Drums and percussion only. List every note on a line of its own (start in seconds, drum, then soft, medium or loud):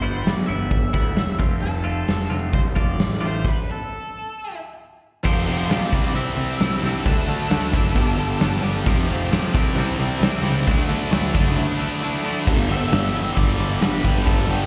0.26 snare loud
0.26 open hi-hat soft
0.71 kick medium
0.71 open hi-hat soft
0.94 kick medium
1.16 snare medium
1.16 open hi-hat soft
1.40 kick medium
1.63 open hi-hat soft
2.08 snare medium
2.08 open hi-hat soft
2.53 kick medium
2.53 open hi-hat soft
2.76 kick medium
2.99 snare medium
2.99 open hi-hat soft
3.44 kick medium
3.44 crash medium
5.25 kick medium
5.25 crash medium
5.48 open hi-hat medium
5.71 snare loud
5.71 open hi-hat medium
5.93 kick medium
5.93 open hi-hat medium
6.15 open hi-hat medium
6.38 open hi-hat medium
6.60 snare loud
6.60 open hi-hat medium
6.83 open hi-hat medium
7.06 kick medium
7.06 open hi-hat medium
7.29 open hi-hat medium
7.51 snare loud
7.51 open hi-hat medium
7.73 kick medium
7.73 open hi-hat medium
7.96 kick medium
7.96 open hi-hat medium
8.18 open hi-hat medium
8.41 snare loud
8.41 open hi-hat medium
8.64 open hi-hat soft
8.86 kick medium
8.86 open hi-hat medium
9.10 open hi-hat medium
9.32 snare loud
9.32 open hi-hat medium
9.55 kick loud
9.55 open hi-hat medium
9.77 open hi-hat medium
9.90 snare soft
10.00 open hi-hat medium
10.22 snare loud
10.22 open hi-hat medium
10.46 open hi-hat medium
10.67 kick medium
10.67 open hi-hat medium
10.90 open hi-hat medium
11.12 snare loud
11.12 open hi-hat medium
11.34 kick medium
11.34 open hi-hat medium
12.47 kick loud
12.47 crash loud
12.47 crash medium
12.71 snare soft
12.92 snare loud
12.92 crash medium
13.37 kick medium
13.37 crash medium
13.82 snare loud
13.82 crash medium
14.05 kick medium
14.27 kick medium
14.27 crash medium
14.39 snare soft